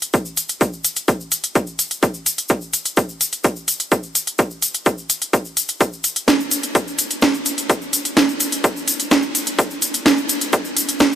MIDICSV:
0, 0, Header, 1, 2, 480
1, 0, Start_track
1, 0, Tempo, 472441
1, 140, Time_signature, 4, 2, 24, 8
1, 11331, End_track
2, 0, Start_track
2, 0, Title_t, "Drums"
2, 21, Note_on_c, 9, 42, 55
2, 21, Note_on_c, 9, 82, 34
2, 123, Note_off_c, 9, 42, 0
2, 123, Note_off_c, 9, 82, 0
2, 137, Note_on_c, 9, 82, 51
2, 139, Note_on_c, 9, 42, 53
2, 140, Note_on_c, 9, 36, 118
2, 238, Note_off_c, 9, 82, 0
2, 240, Note_off_c, 9, 42, 0
2, 242, Note_off_c, 9, 36, 0
2, 258, Note_on_c, 9, 82, 27
2, 359, Note_off_c, 9, 82, 0
2, 376, Note_on_c, 9, 82, 96
2, 379, Note_on_c, 9, 42, 102
2, 478, Note_off_c, 9, 82, 0
2, 481, Note_off_c, 9, 42, 0
2, 497, Note_on_c, 9, 82, 37
2, 502, Note_on_c, 9, 42, 53
2, 598, Note_off_c, 9, 82, 0
2, 603, Note_off_c, 9, 42, 0
2, 619, Note_on_c, 9, 42, 56
2, 620, Note_on_c, 9, 36, 115
2, 622, Note_on_c, 9, 82, 51
2, 720, Note_off_c, 9, 42, 0
2, 721, Note_off_c, 9, 36, 0
2, 723, Note_off_c, 9, 82, 0
2, 742, Note_on_c, 9, 82, 24
2, 844, Note_off_c, 9, 82, 0
2, 858, Note_on_c, 9, 82, 86
2, 859, Note_on_c, 9, 42, 103
2, 959, Note_off_c, 9, 82, 0
2, 961, Note_off_c, 9, 42, 0
2, 977, Note_on_c, 9, 82, 42
2, 981, Note_on_c, 9, 42, 56
2, 1079, Note_off_c, 9, 82, 0
2, 1083, Note_off_c, 9, 42, 0
2, 1099, Note_on_c, 9, 42, 54
2, 1099, Note_on_c, 9, 82, 52
2, 1100, Note_on_c, 9, 36, 120
2, 1201, Note_off_c, 9, 36, 0
2, 1201, Note_off_c, 9, 42, 0
2, 1201, Note_off_c, 9, 82, 0
2, 1223, Note_on_c, 9, 82, 27
2, 1325, Note_off_c, 9, 82, 0
2, 1337, Note_on_c, 9, 82, 88
2, 1339, Note_on_c, 9, 42, 106
2, 1439, Note_off_c, 9, 82, 0
2, 1440, Note_off_c, 9, 42, 0
2, 1461, Note_on_c, 9, 42, 52
2, 1462, Note_on_c, 9, 82, 37
2, 1562, Note_off_c, 9, 42, 0
2, 1563, Note_off_c, 9, 82, 0
2, 1578, Note_on_c, 9, 42, 55
2, 1579, Note_on_c, 9, 82, 51
2, 1580, Note_on_c, 9, 36, 117
2, 1680, Note_off_c, 9, 42, 0
2, 1680, Note_off_c, 9, 82, 0
2, 1681, Note_off_c, 9, 36, 0
2, 1696, Note_on_c, 9, 82, 26
2, 1798, Note_off_c, 9, 82, 0
2, 1819, Note_on_c, 9, 42, 106
2, 1821, Note_on_c, 9, 82, 87
2, 1920, Note_off_c, 9, 42, 0
2, 1923, Note_off_c, 9, 82, 0
2, 1940, Note_on_c, 9, 42, 53
2, 1945, Note_on_c, 9, 82, 35
2, 2042, Note_off_c, 9, 42, 0
2, 2046, Note_off_c, 9, 82, 0
2, 2059, Note_on_c, 9, 42, 51
2, 2060, Note_on_c, 9, 36, 125
2, 2062, Note_on_c, 9, 82, 51
2, 2160, Note_off_c, 9, 42, 0
2, 2161, Note_off_c, 9, 36, 0
2, 2164, Note_off_c, 9, 82, 0
2, 2176, Note_on_c, 9, 82, 29
2, 2277, Note_off_c, 9, 82, 0
2, 2298, Note_on_c, 9, 42, 103
2, 2301, Note_on_c, 9, 82, 98
2, 2400, Note_off_c, 9, 42, 0
2, 2403, Note_off_c, 9, 82, 0
2, 2419, Note_on_c, 9, 82, 36
2, 2421, Note_on_c, 9, 42, 52
2, 2521, Note_off_c, 9, 82, 0
2, 2522, Note_off_c, 9, 42, 0
2, 2528, Note_on_c, 9, 82, 57
2, 2539, Note_on_c, 9, 42, 54
2, 2540, Note_on_c, 9, 36, 116
2, 2630, Note_off_c, 9, 82, 0
2, 2641, Note_off_c, 9, 36, 0
2, 2641, Note_off_c, 9, 42, 0
2, 2654, Note_on_c, 9, 82, 24
2, 2756, Note_off_c, 9, 82, 0
2, 2778, Note_on_c, 9, 42, 106
2, 2778, Note_on_c, 9, 82, 95
2, 2879, Note_off_c, 9, 82, 0
2, 2880, Note_off_c, 9, 42, 0
2, 2900, Note_on_c, 9, 82, 41
2, 2901, Note_on_c, 9, 42, 52
2, 3002, Note_off_c, 9, 42, 0
2, 3002, Note_off_c, 9, 82, 0
2, 3016, Note_on_c, 9, 82, 56
2, 3019, Note_on_c, 9, 42, 52
2, 3020, Note_on_c, 9, 36, 126
2, 3118, Note_off_c, 9, 82, 0
2, 3121, Note_off_c, 9, 42, 0
2, 3122, Note_off_c, 9, 36, 0
2, 3138, Note_on_c, 9, 82, 27
2, 3239, Note_off_c, 9, 82, 0
2, 3259, Note_on_c, 9, 42, 109
2, 3264, Note_on_c, 9, 82, 104
2, 3361, Note_off_c, 9, 42, 0
2, 3366, Note_off_c, 9, 82, 0
2, 3379, Note_on_c, 9, 82, 38
2, 3380, Note_on_c, 9, 42, 52
2, 3480, Note_off_c, 9, 82, 0
2, 3482, Note_off_c, 9, 42, 0
2, 3496, Note_on_c, 9, 82, 49
2, 3499, Note_on_c, 9, 42, 51
2, 3500, Note_on_c, 9, 36, 122
2, 3597, Note_off_c, 9, 82, 0
2, 3601, Note_off_c, 9, 36, 0
2, 3601, Note_off_c, 9, 42, 0
2, 3617, Note_on_c, 9, 82, 26
2, 3719, Note_off_c, 9, 82, 0
2, 3738, Note_on_c, 9, 42, 107
2, 3740, Note_on_c, 9, 82, 93
2, 3840, Note_off_c, 9, 42, 0
2, 3842, Note_off_c, 9, 82, 0
2, 3860, Note_on_c, 9, 42, 53
2, 3861, Note_on_c, 9, 82, 38
2, 3962, Note_off_c, 9, 42, 0
2, 3963, Note_off_c, 9, 82, 0
2, 3979, Note_on_c, 9, 42, 51
2, 3979, Note_on_c, 9, 82, 58
2, 3980, Note_on_c, 9, 36, 122
2, 4080, Note_off_c, 9, 42, 0
2, 4081, Note_off_c, 9, 36, 0
2, 4081, Note_off_c, 9, 82, 0
2, 4096, Note_on_c, 9, 82, 26
2, 4198, Note_off_c, 9, 82, 0
2, 4219, Note_on_c, 9, 42, 101
2, 4221, Note_on_c, 9, 82, 94
2, 4320, Note_off_c, 9, 42, 0
2, 4322, Note_off_c, 9, 82, 0
2, 4341, Note_on_c, 9, 42, 52
2, 4344, Note_on_c, 9, 82, 41
2, 4442, Note_off_c, 9, 42, 0
2, 4446, Note_off_c, 9, 82, 0
2, 4455, Note_on_c, 9, 82, 49
2, 4459, Note_on_c, 9, 42, 53
2, 4460, Note_on_c, 9, 36, 118
2, 4557, Note_off_c, 9, 82, 0
2, 4560, Note_off_c, 9, 42, 0
2, 4561, Note_off_c, 9, 36, 0
2, 4577, Note_on_c, 9, 82, 24
2, 4678, Note_off_c, 9, 82, 0
2, 4698, Note_on_c, 9, 42, 103
2, 4698, Note_on_c, 9, 82, 98
2, 4800, Note_off_c, 9, 42, 0
2, 4800, Note_off_c, 9, 82, 0
2, 4820, Note_on_c, 9, 82, 44
2, 4821, Note_on_c, 9, 42, 52
2, 4922, Note_off_c, 9, 82, 0
2, 4923, Note_off_c, 9, 42, 0
2, 4937, Note_on_c, 9, 82, 49
2, 4939, Note_on_c, 9, 36, 123
2, 4939, Note_on_c, 9, 42, 50
2, 5039, Note_off_c, 9, 82, 0
2, 5041, Note_off_c, 9, 36, 0
2, 5041, Note_off_c, 9, 42, 0
2, 5059, Note_on_c, 9, 82, 27
2, 5161, Note_off_c, 9, 82, 0
2, 5179, Note_on_c, 9, 42, 110
2, 5180, Note_on_c, 9, 82, 90
2, 5281, Note_off_c, 9, 42, 0
2, 5282, Note_off_c, 9, 82, 0
2, 5301, Note_on_c, 9, 42, 50
2, 5302, Note_on_c, 9, 82, 36
2, 5402, Note_off_c, 9, 42, 0
2, 5403, Note_off_c, 9, 82, 0
2, 5418, Note_on_c, 9, 42, 51
2, 5419, Note_on_c, 9, 36, 122
2, 5422, Note_on_c, 9, 82, 55
2, 5520, Note_off_c, 9, 42, 0
2, 5521, Note_off_c, 9, 36, 0
2, 5523, Note_off_c, 9, 82, 0
2, 5536, Note_on_c, 9, 82, 26
2, 5638, Note_off_c, 9, 82, 0
2, 5658, Note_on_c, 9, 42, 105
2, 5662, Note_on_c, 9, 82, 84
2, 5760, Note_off_c, 9, 42, 0
2, 5764, Note_off_c, 9, 82, 0
2, 5774, Note_on_c, 9, 82, 37
2, 5780, Note_on_c, 9, 42, 52
2, 5876, Note_off_c, 9, 82, 0
2, 5882, Note_off_c, 9, 42, 0
2, 5897, Note_on_c, 9, 82, 54
2, 5899, Note_on_c, 9, 36, 120
2, 5899, Note_on_c, 9, 42, 52
2, 5999, Note_off_c, 9, 82, 0
2, 6000, Note_off_c, 9, 42, 0
2, 6001, Note_off_c, 9, 36, 0
2, 6025, Note_on_c, 9, 82, 27
2, 6126, Note_off_c, 9, 82, 0
2, 6137, Note_on_c, 9, 82, 92
2, 6138, Note_on_c, 9, 42, 96
2, 6239, Note_off_c, 9, 42, 0
2, 6239, Note_off_c, 9, 82, 0
2, 6260, Note_on_c, 9, 42, 53
2, 6261, Note_on_c, 9, 82, 34
2, 6362, Note_off_c, 9, 42, 0
2, 6363, Note_off_c, 9, 82, 0
2, 6379, Note_on_c, 9, 36, 117
2, 6379, Note_on_c, 9, 38, 115
2, 6379, Note_on_c, 9, 42, 55
2, 6381, Note_on_c, 9, 82, 55
2, 6480, Note_off_c, 9, 38, 0
2, 6480, Note_off_c, 9, 42, 0
2, 6481, Note_off_c, 9, 36, 0
2, 6482, Note_off_c, 9, 82, 0
2, 6503, Note_on_c, 9, 82, 25
2, 6605, Note_off_c, 9, 82, 0
2, 6617, Note_on_c, 9, 82, 92
2, 6618, Note_on_c, 9, 42, 102
2, 6719, Note_off_c, 9, 82, 0
2, 6720, Note_off_c, 9, 42, 0
2, 6736, Note_on_c, 9, 82, 41
2, 6740, Note_on_c, 9, 42, 53
2, 6838, Note_off_c, 9, 82, 0
2, 6842, Note_off_c, 9, 42, 0
2, 6858, Note_on_c, 9, 42, 53
2, 6859, Note_on_c, 9, 36, 119
2, 6861, Note_on_c, 9, 82, 47
2, 6960, Note_off_c, 9, 42, 0
2, 6961, Note_off_c, 9, 36, 0
2, 6962, Note_off_c, 9, 82, 0
2, 6987, Note_on_c, 9, 82, 26
2, 7089, Note_off_c, 9, 82, 0
2, 7098, Note_on_c, 9, 42, 103
2, 7098, Note_on_c, 9, 82, 88
2, 7199, Note_off_c, 9, 82, 0
2, 7200, Note_off_c, 9, 42, 0
2, 7221, Note_on_c, 9, 42, 51
2, 7221, Note_on_c, 9, 82, 36
2, 7322, Note_off_c, 9, 42, 0
2, 7322, Note_off_c, 9, 82, 0
2, 7335, Note_on_c, 9, 82, 55
2, 7339, Note_on_c, 9, 36, 116
2, 7339, Note_on_c, 9, 38, 114
2, 7339, Note_on_c, 9, 42, 53
2, 7437, Note_off_c, 9, 82, 0
2, 7440, Note_off_c, 9, 38, 0
2, 7440, Note_off_c, 9, 42, 0
2, 7441, Note_off_c, 9, 36, 0
2, 7461, Note_on_c, 9, 82, 24
2, 7562, Note_off_c, 9, 82, 0
2, 7578, Note_on_c, 9, 42, 102
2, 7578, Note_on_c, 9, 82, 89
2, 7680, Note_off_c, 9, 42, 0
2, 7680, Note_off_c, 9, 82, 0
2, 7701, Note_on_c, 9, 42, 53
2, 7706, Note_on_c, 9, 82, 42
2, 7802, Note_off_c, 9, 42, 0
2, 7807, Note_off_c, 9, 82, 0
2, 7818, Note_on_c, 9, 42, 56
2, 7819, Note_on_c, 9, 36, 116
2, 7821, Note_on_c, 9, 82, 47
2, 7920, Note_off_c, 9, 42, 0
2, 7921, Note_off_c, 9, 36, 0
2, 7923, Note_off_c, 9, 82, 0
2, 7941, Note_on_c, 9, 82, 26
2, 8042, Note_off_c, 9, 82, 0
2, 8058, Note_on_c, 9, 42, 97
2, 8061, Note_on_c, 9, 82, 86
2, 8160, Note_off_c, 9, 42, 0
2, 8162, Note_off_c, 9, 82, 0
2, 8180, Note_on_c, 9, 42, 55
2, 8184, Note_on_c, 9, 82, 35
2, 8282, Note_off_c, 9, 42, 0
2, 8285, Note_off_c, 9, 82, 0
2, 8298, Note_on_c, 9, 38, 113
2, 8298, Note_on_c, 9, 42, 57
2, 8299, Note_on_c, 9, 36, 111
2, 8304, Note_on_c, 9, 82, 53
2, 8400, Note_off_c, 9, 38, 0
2, 8400, Note_off_c, 9, 42, 0
2, 8401, Note_off_c, 9, 36, 0
2, 8406, Note_off_c, 9, 82, 0
2, 8420, Note_on_c, 9, 82, 25
2, 8521, Note_off_c, 9, 82, 0
2, 8536, Note_on_c, 9, 82, 90
2, 8538, Note_on_c, 9, 42, 97
2, 8637, Note_off_c, 9, 82, 0
2, 8640, Note_off_c, 9, 42, 0
2, 8658, Note_on_c, 9, 82, 37
2, 8660, Note_on_c, 9, 42, 55
2, 8760, Note_off_c, 9, 82, 0
2, 8762, Note_off_c, 9, 42, 0
2, 8778, Note_on_c, 9, 42, 55
2, 8779, Note_on_c, 9, 36, 115
2, 8781, Note_on_c, 9, 82, 55
2, 8880, Note_off_c, 9, 42, 0
2, 8881, Note_off_c, 9, 36, 0
2, 8883, Note_off_c, 9, 82, 0
2, 8904, Note_on_c, 9, 82, 26
2, 9006, Note_off_c, 9, 82, 0
2, 9018, Note_on_c, 9, 42, 102
2, 9024, Note_on_c, 9, 82, 93
2, 9120, Note_off_c, 9, 42, 0
2, 9125, Note_off_c, 9, 82, 0
2, 9141, Note_on_c, 9, 42, 53
2, 9147, Note_on_c, 9, 82, 37
2, 9242, Note_off_c, 9, 42, 0
2, 9248, Note_off_c, 9, 82, 0
2, 9259, Note_on_c, 9, 36, 114
2, 9259, Note_on_c, 9, 38, 113
2, 9259, Note_on_c, 9, 42, 56
2, 9259, Note_on_c, 9, 82, 55
2, 9360, Note_off_c, 9, 38, 0
2, 9360, Note_off_c, 9, 42, 0
2, 9360, Note_off_c, 9, 82, 0
2, 9361, Note_off_c, 9, 36, 0
2, 9371, Note_on_c, 9, 82, 25
2, 9472, Note_off_c, 9, 82, 0
2, 9499, Note_on_c, 9, 42, 102
2, 9502, Note_on_c, 9, 82, 83
2, 9600, Note_off_c, 9, 42, 0
2, 9604, Note_off_c, 9, 82, 0
2, 9615, Note_on_c, 9, 82, 39
2, 9621, Note_on_c, 9, 42, 55
2, 9716, Note_off_c, 9, 82, 0
2, 9723, Note_off_c, 9, 42, 0
2, 9739, Note_on_c, 9, 42, 57
2, 9740, Note_on_c, 9, 36, 114
2, 9743, Note_on_c, 9, 82, 50
2, 9841, Note_off_c, 9, 36, 0
2, 9841, Note_off_c, 9, 42, 0
2, 9844, Note_off_c, 9, 82, 0
2, 9860, Note_on_c, 9, 82, 22
2, 9962, Note_off_c, 9, 82, 0
2, 9976, Note_on_c, 9, 82, 87
2, 9978, Note_on_c, 9, 42, 97
2, 10078, Note_off_c, 9, 82, 0
2, 10080, Note_off_c, 9, 42, 0
2, 10101, Note_on_c, 9, 42, 58
2, 10101, Note_on_c, 9, 82, 38
2, 10202, Note_off_c, 9, 42, 0
2, 10203, Note_off_c, 9, 82, 0
2, 10218, Note_on_c, 9, 38, 118
2, 10218, Note_on_c, 9, 42, 59
2, 10219, Note_on_c, 9, 36, 111
2, 10226, Note_on_c, 9, 82, 51
2, 10320, Note_off_c, 9, 38, 0
2, 10320, Note_off_c, 9, 42, 0
2, 10321, Note_off_c, 9, 36, 0
2, 10327, Note_off_c, 9, 82, 0
2, 10340, Note_on_c, 9, 82, 24
2, 10441, Note_off_c, 9, 82, 0
2, 10456, Note_on_c, 9, 82, 82
2, 10458, Note_on_c, 9, 42, 100
2, 10557, Note_off_c, 9, 82, 0
2, 10560, Note_off_c, 9, 42, 0
2, 10578, Note_on_c, 9, 82, 38
2, 10580, Note_on_c, 9, 42, 58
2, 10680, Note_off_c, 9, 82, 0
2, 10682, Note_off_c, 9, 42, 0
2, 10697, Note_on_c, 9, 82, 49
2, 10698, Note_on_c, 9, 42, 59
2, 10699, Note_on_c, 9, 36, 113
2, 10799, Note_off_c, 9, 82, 0
2, 10800, Note_off_c, 9, 42, 0
2, 10801, Note_off_c, 9, 36, 0
2, 10817, Note_on_c, 9, 82, 26
2, 10918, Note_off_c, 9, 82, 0
2, 10938, Note_on_c, 9, 42, 101
2, 10950, Note_on_c, 9, 82, 91
2, 11040, Note_off_c, 9, 42, 0
2, 11051, Note_off_c, 9, 82, 0
2, 11060, Note_on_c, 9, 82, 36
2, 11061, Note_on_c, 9, 42, 56
2, 11162, Note_off_c, 9, 42, 0
2, 11162, Note_off_c, 9, 82, 0
2, 11175, Note_on_c, 9, 82, 53
2, 11179, Note_on_c, 9, 36, 116
2, 11179, Note_on_c, 9, 38, 116
2, 11179, Note_on_c, 9, 42, 59
2, 11276, Note_off_c, 9, 82, 0
2, 11280, Note_off_c, 9, 38, 0
2, 11280, Note_off_c, 9, 42, 0
2, 11281, Note_off_c, 9, 36, 0
2, 11331, End_track
0, 0, End_of_file